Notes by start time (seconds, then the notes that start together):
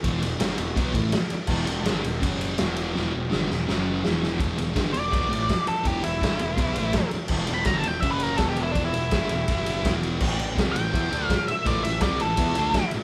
0.03 E1 E2 B2 E3, kick, ride
0.21 E1 E2 B2, ride
0.39 G1 G2 D3 G3, snare, ride
0.57 E1 E2 B2, ride
0.76 B1 B2 F#3 B3, kick, ride
0.93 A1 A2 E3 A3, kick, ride
1.12 muted distorted electric guitar stroke, muted picked electric bass stroke, snare, ride
1.30 muted distorted electric guitar stroke, muted picked electric bass stroke, ride
1.47 E1 E2 B2 E3, kick, crash
1.67 E1 E2 B2, ride
1.85 G1 G2 D3 G3, snare, ride
2.03 E1 E2 B2, ride
2.21 F#1 F#2 C#3 F#3, kick, ride
2.41 ride
2.58 E1 E2 B2 E3, snare, ride
2.76 ride
2.94 E1 E2 B2 E3, snare
3.13 E1 E2 B2
3.30 G2 D3 G3, snare
3.34 G1
3.48 E1 E2 B2, snare
3.66 F#1 F#2 C#3 F#3, snare
4.04 E1 E2 B2 E3, snare
4.23 snare
4.39 E1 E2 B2 E3, kick, ride
4.58 E1 E2 B2, ride
4.74 G1 G2 D3 G3, kick, snare, ride
4.93 E1 E2 B2 D5, ride
5.10 B1 B2 F#3 B3, kick, ride
5.28 A2 E3 A3
5.33 A1, ride
5.47 muted distorted electric guitar stroke, muted picked electric bass stroke, kick, snare, ride
5.66 A4, muted distorted electric guitar stroke, muted picked electric bass stroke, ride
5.84 E1 E2 B2 E3 G4, kick, ride
6.02 E1 E2 B2 E4, ride
6.21 G1 G2 D3 G3, kick, snare, ride
6.39 E1 E2 B2, ride
6.57 B1 B2 F#3 B3, kick, ride
6.76 A1 A2 E3 A3, ride
6.93 muted picked electric bass stroke, muted distorted electric guitar stroke, kick, snare, ride
7.11 muted distorted electric guitar stroke, muted picked electric bass stroke, ride
7.28 E1 E2 B2, kick, crash
7.32 E3
7.47 E1 E2 B2, ride
7.54 B5
7.65 G1 G2 A#5, kick, snare, ride
7.69 D3 G3
7.76 A5
7.83 E1 E2 B2, ride
7.88 G5
8.00 F#1 F#2 C#3 F#3 E5, kick, ride
8.11 B4
8.20 A#4, ride
8.37 E1 E2 B2 A4, kick, snare, ride
8.41 E3
8.49 G4
8.56 ride
8.61 E4
8.72 E1 E2 D4, kick, ride
8.77 B2 E3
8.85 E4
8.94 E1 E2 B2, ride
9.11 G1 G2 D3 G3, kick, snare, ride
9.29 E1 E2 B2, ride
9.48 F#1 F#2 C#3 F#3, kick, ride
9.66 ride
9.85 E1 E2 B2 E3, kick, snare, ride
10.03 ride
10.21 A1 A2 E3 A3, kick, crash
10.38 A1 A2 E3, ride
10.56 C2 C3 G3 C4, kick, snare, ride
10.72 A2 E3 G5, ride
10.77 A1
10.92 E2 E3 B3 E4, kick, ride
11.10 D2 D3 A3 D4, ride
11.27 F5, muted distorted electric guitar stroke, muted picked electric bass stroke, kick, snare, ride
11.47 E5, muted distorted electric guitar stroke, muted picked electric bass stroke, ride
11.65 A1 A2 E3 A3 D5, kick, ride
11.83 A1 A2 E3 E5, ride
12.01 C2 C3 G3 C4 D5, kick, snare, ride
12.20 A1 A2 E3 A4, ride
12.36 E2 E3 B3 E4, kick, ride
12.55 D2 D3 A3 D4, ride
12.74 muted picked electric bass stroke, muted distorted electric guitar stroke, kick, snare, ride
12.91 muted distorted electric guitar stroke, ride
12.95 muted picked electric bass stroke